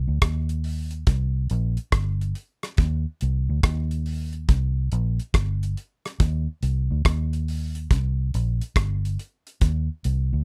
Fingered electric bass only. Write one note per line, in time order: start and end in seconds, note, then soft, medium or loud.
0.08 0.21 D2 medium
0.22 1.04 D#2 medium
1.07 1.47 C2 loud
1.51 1.76 A#1 loud
1.93 2.33 G1 medium
2.79 3.04 D#2 loud
3.22 3.48 C2 loud
3.49 3.63 D2 medium
3.64 4.45 D#2 loud
4.49 4.89 C2 loud
4.92 5.18 A#1 loud
5.34 5.74 G1 loud
6.20 6.46 D#2 loud
6.63 6.88 C2 loud
6.91 7.05 D2 medium
7.06 7.87 D#2 loud
7.91 8.31 C2 loud
8.35 8.60 A#1 loud
8.76 9.16 G1 loud
9.62 9.87 D#2 loud
10.05 10.30 C2 loud
10.33 10.44 D2 loud